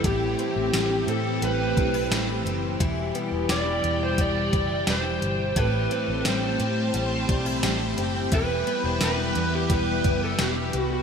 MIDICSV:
0, 0, Header, 1, 7, 480
1, 0, Start_track
1, 0, Tempo, 689655
1, 31, Time_signature, 4, 2, 24, 8
1, 7673, End_track
2, 0, Start_track
2, 0, Title_t, "Glockenspiel"
2, 0, Program_c, 0, 9
2, 2436, Note_on_c, 0, 86, 59
2, 3647, Note_off_c, 0, 86, 0
2, 7673, End_track
3, 0, Start_track
3, 0, Title_t, "Electric slide guitar"
3, 0, Program_c, 1, 29
3, 41, Note_on_c, 1, 67, 93
3, 758, Note_off_c, 1, 67, 0
3, 760, Note_on_c, 1, 69, 77
3, 1003, Note_off_c, 1, 69, 0
3, 1006, Note_on_c, 1, 71, 82
3, 1451, Note_off_c, 1, 71, 0
3, 2447, Note_on_c, 1, 74, 92
3, 2805, Note_on_c, 1, 72, 89
3, 2810, Note_off_c, 1, 74, 0
3, 2922, Note_off_c, 1, 72, 0
3, 2931, Note_on_c, 1, 74, 106
3, 3401, Note_off_c, 1, 74, 0
3, 3411, Note_on_c, 1, 72, 100
3, 3888, Note_off_c, 1, 72, 0
3, 3891, Note_on_c, 1, 71, 94
3, 4369, Note_off_c, 1, 71, 0
3, 4372, Note_on_c, 1, 72, 73
3, 5533, Note_off_c, 1, 72, 0
3, 5812, Note_on_c, 1, 71, 114
3, 6165, Note_off_c, 1, 71, 0
3, 6168, Note_on_c, 1, 72, 93
3, 6283, Note_off_c, 1, 72, 0
3, 6286, Note_on_c, 1, 71, 108
3, 6649, Note_off_c, 1, 71, 0
3, 6649, Note_on_c, 1, 67, 91
3, 6763, Note_off_c, 1, 67, 0
3, 6768, Note_on_c, 1, 71, 104
3, 7125, Note_off_c, 1, 71, 0
3, 7127, Note_on_c, 1, 69, 93
3, 7231, Note_off_c, 1, 69, 0
3, 7246, Note_on_c, 1, 67, 91
3, 7510, Note_off_c, 1, 67, 0
3, 7510, Note_on_c, 1, 66, 91
3, 7603, Note_off_c, 1, 66, 0
3, 7606, Note_on_c, 1, 66, 84
3, 7673, Note_off_c, 1, 66, 0
3, 7673, End_track
4, 0, Start_track
4, 0, Title_t, "Twelve-string acoustic guitar"
4, 0, Program_c, 2, 25
4, 0, Note_on_c, 2, 52, 81
4, 0, Note_on_c, 2, 55, 61
4, 0, Note_on_c, 2, 59, 60
4, 31, Note_on_c, 2, 45, 81
4, 35, Note_on_c, 2, 64, 69
4, 79, Note_off_c, 2, 59, 0
4, 269, Note_on_c, 2, 60, 59
4, 507, Note_off_c, 2, 55, 0
4, 510, Note_on_c, 2, 55, 60
4, 547, Note_off_c, 2, 52, 0
4, 742, Note_off_c, 2, 60, 0
4, 750, Note_on_c, 2, 60, 61
4, 987, Note_off_c, 2, 55, 0
4, 990, Note_on_c, 2, 55, 58
4, 1227, Note_off_c, 2, 64, 0
4, 1230, Note_on_c, 2, 62, 60
4, 1351, Note_off_c, 2, 62, 0
4, 1351, Note_on_c, 2, 64, 52
4, 1467, Note_off_c, 2, 55, 0
4, 1470, Note_on_c, 2, 55, 53
4, 1702, Note_off_c, 2, 60, 0
4, 1710, Note_on_c, 2, 60, 55
4, 1945, Note_off_c, 2, 64, 0
4, 1950, Note_on_c, 2, 52, 82
4, 1951, Note_off_c, 2, 45, 0
4, 1954, Note_on_c, 2, 64, 63
4, 1999, Note_off_c, 2, 60, 0
4, 2190, Note_on_c, 2, 59, 61
4, 2428, Note_off_c, 2, 55, 0
4, 2431, Note_on_c, 2, 55, 61
4, 2670, Note_off_c, 2, 59, 0
4, 2910, Note_off_c, 2, 55, 0
4, 2913, Note_on_c, 2, 55, 62
4, 3148, Note_off_c, 2, 64, 0
4, 3151, Note_on_c, 2, 64, 62
4, 3390, Note_off_c, 2, 55, 0
4, 3393, Note_on_c, 2, 55, 61
4, 3873, Note_on_c, 2, 45, 90
4, 3874, Note_off_c, 2, 64, 0
4, 3877, Note_on_c, 2, 64, 70
4, 4114, Note_on_c, 2, 60, 72
4, 4351, Note_off_c, 2, 55, 0
4, 4354, Note_on_c, 2, 55, 67
4, 4386, Note_off_c, 2, 52, 0
4, 4585, Note_off_c, 2, 60, 0
4, 4594, Note_on_c, 2, 60, 64
4, 4830, Note_off_c, 2, 55, 0
4, 4833, Note_on_c, 2, 55, 64
4, 5070, Note_off_c, 2, 64, 0
4, 5073, Note_on_c, 2, 62, 65
4, 5192, Note_off_c, 2, 62, 0
4, 5192, Note_on_c, 2, 64, 56
4, 5311, Note_off_c, 2, 55, 0
4, 5314, Note_on_c, 2, 55, 61
4, 5544, Note_off_c, 2, 60, 0
4, 5552, Note_on_c, 2, 60, 64
4, 5789, Note_off_c, 2, 64, 0
4, 5792, Note_off_c, 2, 45, 0
4, 5793, Note_on_c, 2, 52, 82
4, 5797, Note_on_c, 2, 64, 70
4, 5840, Note_off_c, 2, 60, 0
4, 6033, Note_on_c, 2, 59, 68
4, 6271, Note_off_c, 2, 55, 0
4, 6274, Note_on_c, 2, 55, 63
4, 6503, Note_off_c, 2, 59, 0
4, 6512, Note_on_c, 2, 59, 58
4, 6744, Note_off_c, 2, 55, 0
4, 6752, Note_on_c, 2, 55, 58
4, 6984, Note_off_c, 2, 64, 0
4, 6993, Note_on_c, 2, 64, 63
4, 7225, Note_off_c, 2, 55, 0
4, 7233, Note_on_c, 2, 55, 61
4, 7463, Note_off_c, 2, 59, 0
4, 7471, Note_on_c, 2, 59, 54
4, 7673, Note_off_c, 2, 52, 0
4, 7673, Note_off_c, 2, 55, 0
4, 7673, Note_off_c, 2, 59, 0
4, 7673, Note_off_c, 2, 64, 0
4, 7673, End_track
5, 0, Start_track
5, 0, Title_t, "String machine"
5, 0, Program_c, 3, 50
5, 0, Note_on_c, 3, 52, 82
5, 28, Note_on_c, 3, 57, 77
5, 29, Note_on_c, 3, 67, 89
5, 31, Note_on_c, 3, 60, 78
5, 1930, Note_off_c, 3, 57, 0
5, 1931, Note_off_c, 3, 67, 0
5, 1932, Note_off_c, 3, 60, 0
5, 1952, Note_on_c, 3, 47, 84
5, 1952, Note_on_c, 3, 55, 77
5, 1953, Note_on_c, 3, 67, 92
5, 3852, Note_off_c, 3, 55, 0
5, 3853, Note_off_c, 3, 47, 0
5, 3853, Note_off_c, 3, 67, 0
5, 3876, Note_on_c, 3, 57, 72
5, 3877, Note_on_c, 3, 67, 94
5, 3879, Note_on_c, 3, 60, 73
5, 5762, Note_off_c, 3, 52, 0
5, 5774, Note_off_c, 3, 57, 0
5, 5776, Note_off_c, 3, 60, 0
5, 5797, Note_on_c, 3, 52, 88
5, 5797, Note_on_c, 3, 55, 77
5, 5797, Note_on_c, 3, 59, 80
5, 7673, Note_off_c, 3, 52, 0
5, 7673, Note_off_c, 3, 55, 0
5, 7673, Note_off_c, 3, 59, 0
5, 7673, Note_off_c, 3, 67, 0
5, 7673, End_track
6, 0, Start_track
6, 0, Title_t, "Picked electric bass"
6, 0, Program_c, 4, 34
6, 29, Note_on_c, 4, 33, 109
6, 241, Note_off_c, 4, 33, 0
6, 391, Note_on_c, 4, 33, 86
6, 497, Note_off_c, 4, 33, 0
6, 510, Note_on_c, 4, 33, 106
6, 722, Note_off_c, 4, 33, 0
6, 748, Note_on_c, 4, 45, 88
6, 961, Note_off_c, 4, 45, 0
6, 988, Note_on_c, 4, 33, 93
6, 1200, Note_off_c, 4, 33, 0
6, 1231, Note_on_c, 4, 35, 97
6, 1442, Note_off_c, 4, 35, 0
6, 1467, Note_on_c, 4, 33, 110
6, 1680, Note_off_c, 4, 33, 0
6, 1708, Note_on_c, 4, 30, 73
6, 1921, Note_off_c, 4, 30, 0
6, 1951, Note_on_c, 4, 28, 119
6, 2162, Note_off_c, 4, 28, 0
6, 2310, Note_on_c, 4, 28, 81
6, 2416, Note_off_c, 4, 28, 0
6, 2427, Note_on_c, 4, 28, 96
6, 2640, Note_off_c, 4, 28, 0
6, 2671, Note_on_c, 4, 40, 90
6, 2882, Note_off_c, 4, 40, 0
6, 2909, Note_on_c, 4, 28, 90
6, 3121, Note_off_c, 4, 28, 0
6, 3152, Note_on_c, 4, 30, 75
6, 3363, Note_off_c, 4, 30, 0
6, 3392, Note_on_c, 4, 28, 119
6, 3603, Note_off_c, 4, 28, 0
6, 3632, Note_on_c, 4, 31, 90
6, 3843, Note_off_c, 4, 31, 0
6, 3871, Note_on_c, 4, 33, 103
6, 4082, Note_off_c, 4, 33, 0
6, 4234, Note_on_c, 4, 33, 94
6, 4338, Note_off_c, 4, 33, 0
6, 4353, Note_on_c, 4, 33, 99
6, 4563, Note_off_c, 4, 33, 0
6, 4594, Note_on_c, 4, 45, 94
6, 4804, Note_off_c, 4, 45, 0
6, 4832, Note_on_c, 4, 33, 97
6, 5043, Note_off_c, 4, 33, 0
6, 5073, Note_on_c, 4, 35, 86
6, 5283, Note_off_c, 4, 35, 0
6, 5311, Note_on_c, 4, 33, 117
6, 5522, Note_off_c, 4, 33, 0
6, 5553, Note_on_c, 4, 30, 84
6, 5764, Note_off_c, 4, 30, 0
6, 5791, Note_on_c, 4, 28, 100
6, 6002, Note_off_c, 4, 28, 0
6, 6153, Note_on_c, 4, 28, 90
6, 6258, Note_off_c, 4, 28, 0
6, 6274, Note_on_c, 4, 28, 96
6, 6484, Note_off_c, 4, 28, 0
6, 6513, Note_on_c, 4, 40, 93
6, 6724, Note_off_c, 4, 40, 0
6, 6749, Note_on_c, 4, 28, 89
6, 6961, Note_off_c, 4, 28, 0
6, 6992, Note_on_c, 4, 30, 90
6, 7203, Note_off_c, 4, 30, 0
6, 7234, Note_on_c, 4, 28, 113
6, 7444, Note_off_c, 4, 28, 0
6, 7474, Note_on_c, 4, 36, 88
6, 7673, Note_off_c, 4, 36, 0
6, 7673, End_track
7, 0, Start_track
7, 0, Title_t, "Drums"
7, 29, Note_on_c, 9, 42, 74
7, 30, Note_on_c, 9, 36, 103
7, 99, Note_off_c, 9, 36, 0
7, 99, Note_off_c, 9, 42, 0
7, 272, Note_on_c, 9, 42, 43
7, 341, Note_off_c, 9, 42, 0
7, 512, Note_on_c, 9, 38, 107
7, 514, Note_on_c, 9, 54, 64
7, 516, Note_on_c, 9, 42, 73
7, 582, Note_off_c, 9, 38, 0
7, 583, Note_off_c, 9, 54, 0
7, 585, Note_off_c, 9, 42, 0
7, 753, Note_on_c, 9, 42, 46
7, 822, Note_off_c, 9, 42, 0
7, 991, Note_on_c, 9, 42, 62
7, 1060, Note_off_c, 9, 42, 0
7, 1233, Note_on_c, 9, 36, 89
7, 1235, Note_on_c, 9, 42, 48
7, 1303, Note_off_c, 9, 36, 0
7, 1305, Note_off_c, 9, 42, 0
7, 1473, Note_on_c, 9, 38, 121
7, 1473, Note_on_c, 9, 54, 72
7, 1475, Note_on_c, 9, 42, 67
7, 1542, Note_off_c, 9, 38, 0
7, 1543, Note_off_c, 9, 54, 0
7, 1545, Note_off_c, 9, 42, 0
7, 1717, Note_on_c, 9, 42, 57
7, 1787, Note_off_c, 9, 42, 0
7, 1952, Note_on_c, 9, 36, 97
7, 1953, Note_on_c, 9, 42, 72
7, 2022, Note_off_c, 9, 36, 0
7, 2023, Note_off_c, 9, 42, 0
7, 2193, Note_on_c, 9, 42, 49
7, 2263, Note_off_c, 9, 42, 0
7, 2431, Note_on_c, 9, 38, 108
7, 2432, Note_on_c, 9, 54, 57
7, 2434, Note_on_c, 9, 42, 72
7, 2500, Note_off_c, 9, 38, 0
7, 2502, Note_off_c, 9, 54, 0
7, 2504, Note_off_c, 9, 42, 0
7, 2672, Note_on_c, 9, 42, 47
7, 2741, Note_off_c, 9, 42, 0
7, 2910, Note_on_c, 9, 36, 83
7, 2910, Note_on_c, 9, 42, 71
7, 2980, Note_off_c, 9, 36, 0
7, 2980, Note_off_c, 9, 42, 0
7, 3153, Note_on_c, 9, 36, 88
7, 3153, Note_on_c, 9, 42, 50
7, 3223, Note_off_c, 9, 36, 0
7, 3223, Note_off_c, 9, 42, 0
7, 3390, Note_on_c, 9, 38, 123
7, 3391, Note_on_c, 9, 54, 72
7, 3392, Note_on_c, 9, 42, 64
7, 3460, Note_off_c, 9, 38, 0
7, 3460, Note_off_c, 9, 54, 0
7, 3462, Note_off_c, 9, 42, 0
7, 3635, Note_on_c, 9, 42, 51
7, 3705, Note_off_c, 9, 42, 0
7, 3871, Note_on_c, 9, 42, 66
7, 3872, Note_on_c, 9, 36, 102
7, 3940, Note_off_c, 9, 42, 0
7, 3942, Note_off_c, 9, 36, 0
7, 4113, Note_on_c, 9, 42, 45
7, 4183, Note_off_c, 9, 42, 0
7, 4350, Note_on_c, 9, 38, 98
7, 4352, Note_on_c, 9, 54, 60
7, 4354, Note_on_c, 9, 42, 71
7, 4420, Note_off_c, 9, 38, 0
7, 4421, Note_off_c, 9, 54, 0
7, 4424, Note_off_c, 9, 42, 0
7, 4591, Note_on_c, 9, 42, 45
7, 4661, Note_off_c, 9, 42, 0
7, 4829, Note_on_c, 9, 42, 68
7, 4899, Note_off_c, 9, 42, 0
7, 5073, Note_on_c, 9, 42, 51
7, 5074, Note_on_c, 9, 36, 99
7, 5143, Note_off_c, 9, 36, 0
7, 5143, Note_off_c, 9, 42, 0
7, 5311, Note_on_c, 9, 38, 127
7, 5311, Note_on_c, 9, 54, 75
7, 5313, Note_on_c, 9, 42, 71
7, 5380, Note_off_c, 9, 38, 0
7, 5381, Note_off_c, 9, 54, 0
7, 5383, Note_off_c, 9, 42, 0
7, 5552, Note_on_c, 9, 42, 51
7, 5622, Note_off_c, 9, 42, 0
7, 5789, Note_on_c, 9, 42, 71
7, 5792, Note_on_c, 9, 36, 107
7, 5859, Note_off_c, 9, 42, 0
7, 5861, Note_off_c, 9, 36, 0
7, 6034, Note_on_c, 9, 42, 45
7, 6104, Note_off_c, 9, 42, 0
7, 6269, Note_on_c, 9, 38, 110
7, 6271, Note_on_c, 9, 54, 63
7, 6273, Note_on_c, 9, 42, 72
7, 6338, Note_off_c, 9, 38, 0
7, 6340, Note_off_c, 9, 54, 0
7, 6342, Note_off_c, 9, 42, 0
7, 6511, Note_on_c, 9, 42, 45
7, 6580, Note_off_c, 9, 42, 0
7, 6749, Note_on_c, 9, 42, 69
7, 6750, Note_on_c, 9, 36, 82
7, 6819, Note_off_c, 9, 42, 0
7, 6820, Note_off_c, 9, 36, 0
7, 6990, Note_on_c, 9, 42, 49
7, 6992, Note_on_c, 9, 36, 97
7, 7060, Note_off_c, 9, 42, 0
7, 7062, Note_off_c, 9, 36, 0
7, 7229, Note_on_c, 9, 38, 110
7, 7229, Note_on_c, 9, 54, 76
7, 7231, Note_on_c, 9, 42, 68
7, 7298, Note_off_c, 9, 38, 0
7, 7299, Note_off_c, 9, 54, 0
7, 7301, Note_off_c, 9, 42, 0
7, 7470, Note_on_c, 9, 42, 58
7, 7540, Note_off_c, 9, 42, 0
7, 7673, End_track
0, 0, End_of_file